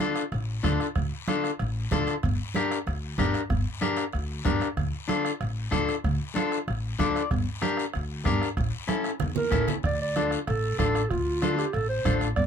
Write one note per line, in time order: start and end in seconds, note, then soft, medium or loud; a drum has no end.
0.00 0.23 D4 medium
0.00 0.23 F4 medium
0.00 0.23 A4 medium
0.00 high conga medium
0.00 short guiro medium
0.16 bombo rim medium
0.16 short guiro medium
0.32 0.58 A1 medium
0.32 bombo rim medium
0.32 high conga soft
0.32 long guiro medium
0.63 0.77 D2 medium
0.63 0.86 D4 medium
0.63 0.86 F4 medium
0.63 0.86 A4 medium
0.63 bombo low medium
0.63 bombo rim medium
0.63 high conga medium
0.63 short guiro medium
0.80 bombo rim medium
0.80 short guiro medium
0.95 1.09 D2 medium
0.95 bombo low medium
0.95 bombo rim medium
0.95 high conga soft
0.95 long guiro medium
1.28 1.50 D4 medium
1.28 1.50 F4 medium
1.28 1.51 A4 medium
1.28 bombo rim medium
1.28 high conga medium
1.28 short guiro medium
1.44 bombo rim medium
1.44 short guiro medium
1.59 1.85 A1 medium
1.59 bombo rim medium
1.59 high conga soft
1.59 long guiro medium
1.91 2.04 D2 medium
1.91 2.14 D4 medium
1.91 2.14 F4 medium
1.91 2.14 A4 loud
1.91 bombo low medium
1.91 bombo rim medium
1.91 high conga medium
1.91 short guiro medium
2.07 bombo rim medium
2.07 short guiro medium
2.23 2.36 G1 medium
2.23 bombo low medium
2.23 bombo rim medium
2.23 high conga soft
2.23 long guiro medium
2.54 2.77 D4 medium
2.54 2.78 G4 medium
2.54 2.78 A#4 medium
2.54 bombo rim medium
2.54 high conga medium
2.54 short guiro medium
2.71 bombo rim medium
2.71 short guiro medium
2.87 3.12 D2 medium
2.87 bombo rim medium
2.87 high conga soft
2.87 long guiro medium
3.18 3.31 G1 medium
3.18 3.41 D4 medium
3.18 3.41 G4 medium
3.18 3.41 A#4 loud
3.18 bombo low medium
3.18 bombo rim medium
3.18 high conga medium
3.18 short guiro medium
3.34 bombo rim medium
3.34 short guiro medium
3.50 3.63 G1 medium
3.50 bombo low medium
3.50 bombo rim medium
3.50 high conga soft
3.50 long guiro medium
3.81 4.04 D4 medium
3.81 4.04 G4 medium
3.81 4.04 A#4 medium
3.81 bombo rim medium
3.81 high conga medium
3.81 short guiro medium
3.96 bombo rim medium
3.96 short guiro medium
4.12 4.39 D2 medium
4.12 bombo rim medium
4.12 high conga soft
4.12 long guiro medium
4.44 4.58 G1 medium
4.44 4.67 D4 medium
4.44 4.67 G4 medium
4.44 4.67 A#4 medium
4.44 bombo low medium
4.44 bombo rim medium
4.44 high conga medium
4.44 short guiro medium
4.61 bombo rim medium
4.61 short guiro medium
4.77 4.90 D2 medium
4.77 bombo low medium
4.77 bombo rim medium
4.77 high conga soft
4.77 long guiro medium
5.08 5.30 D4 medium
5.08 5.31 F4 medium
5.08 5.31 A4 medium
5.08 bombo rim medium
5.08 high conga medium
5.08 short guiro medium
5.25 bombo rim medium
5.25 short guiro medium
5.41 5.66 A1 medium
5.41 bombo rim medium
5.41 high conga soft
5.41 long guiro medium
5.71 5.85 D2 medium
5.71 5.94 D4 medium
5.71 5.94 F4 medium
5.71 5.94 A4 loud
5.71 bombo low medium
5.71 bombo rim medium
5.71 high conga medium
5.71 short guiro medium
5.89 bombo rim medium
5.89 short guiro medium
6.04 6.17 D2 medium
6.04 bombo low medium
6.04 bombo rim medium
6.04 high conga soft
6.04 long guiro medium
6.35 6.57 D4 medium
6.35 6.58 F4 medium
6.35 6.58 A4 medium
6.35 bombo rim medium
6.35 high conga medium
6.35 short guiro medium
6.52 bombo rim medium
6.52 short guiro medium
6.68 6.93 A1 medium
6.68 bombo rim medium
6.68 high conga soft
6.68 long guiro medium
6.99 7.12 D2 medium
6.99 7.21 D4 medium
6.99 7.21 F4 medium
6.99 7.22 A4 loud
6.99 7.28 D5 medium
6.99 bombo low medium
6.99 bombo rim medium
6.99 high conga medium
6.99 short guiro medium
7.16 bombo rim medium
7.16 short guiro medium
7.31 7.44 G1 medium
7.31 bombo low medium
7.31 bombo rim medium
7.31 high conga soft
7.31 long guiro medium
7.62 7.84 D4 medium
7.62 7.84 G4 medium
7.62 7.84 A#4 medium
7.62 bombo rim medium
7.62 high conga medium
7.62 short guiro medium
7.77 bombo rim medium
7.77 short guiro medium
7.94 8.20 D2 medium
7.94 bombo rim medium
7.94 high conga soft
7.94 long guiro medium
8.25 8.38 G1 medium
8.25 8.48 D4 medium
8.25 8.48 G4 medium
8.25 8.48 A#4 loud
8.25 bombo low medium
8.25 bombo rim medium
8.25 high conga medium
8.25 short guiro medium
8.42 bombo rim medium
8.42 short guiro medium
8.57 8.70 A1 loud
8.57 bombo low medium
8.57 bombo rim medium
8.57 high conga soft
8.57 long guiro medium
8.88 9.10 C#4 medium
8.88 9.10 E4 medium
8.88 9.11 A4 medium
8.88 bombo rim medium
8.88 high conga medium
8.88 short guiro medium
9.04 bombo rim medium
9.04 short guiro medium
9.20 9.46 E2 medium
9.20 bombo rim medium
9.20 low conga medium
9.20 long guiro medium
9.36 9.66 A#4 medium
9.36 low conga medium
9.51 9.65 A1 medium
9.51 9.74 C#4 medium
9.51 9.74 E4 medium
9.51 9.74 A4 medium
9.51 bombo low medium
9.51 bombo rim medium
9.51 low conga medium
9.51 short guiro medium
9.68 bombo rim medium
9.68 low conga medium
9.68 short guiro medium
9.83 10.35 D2 medium
9.83 10.00 D5 medium
9.83 bombo low medium
9.83 bombo rim medium
9.83 high conga soft
9.83 long guiro medium
10.02 10.30 D5 medium
10.16 10.38 D4 medium
10.16 10.38 F4 medium
10.16 10.38 A4 medium
10.16 bombo rim medium
10.16 high conga medium
10.16 short guiro medium
10.31 bombo rim medium
10.31 short guiro medium
10.47 10.73 A1 medium
10.47 10.77 A4 medium
10.47 bombo rim medium
10.47 high conga soft
10.47 long guiro medium
10.79 11.04 A1 medium
10.79 11.01 D4 medium
10.79 11.01 F4 medium
10.79 11.12 A4 medium
10.79 11.01 A4 medium
10.79 bombo low medium
10.79 bombo rim medium
10.79 high conga medium
10.79 short guiro medium
10.95 bombo rim medium
10.95 short guiro medium
11.10 11.61 D2 medium
11.10 11.57 F4 medium
11.10 bombo low medium
11.10 bombo rim medium
11.10 high conga soft
11.10 long guiro medium
11.42 11.64 D4 medium
11.42 11.65 F4 medium
11.42 11.65 A4 medium
11.42 bombo rim medium
11.42 high conga medium
11.42 short guiro medium
11.58 11.75 G4 medium
11.58 bombo rim medium
11.58 short guiro medium
11.73 11.99 A1 medium
11.73 11.88 A4 medium
11.73 bombo rim medium
11.73 high conga soft
11.73 long guiro medium
11.89 12.19 C5 medium
12.05 12.31 A1 medium
12.05 12.27 D4 medium
12.05 12.27 F4 medium
12.05 12.28 A4 medium
12.05 bombo low medium
12.05 bombo rim medium
12.05 high conga medium
12.05 short guiro medium
12.21 bombo rim medium
12.21 short guiro medium
12.36 12.47 G1 medium
12.36 12.44 D5 medium
12.36 bombo low medium
12.36 bombo rim medium
12.36 high conga soft
12.36 long guiro medium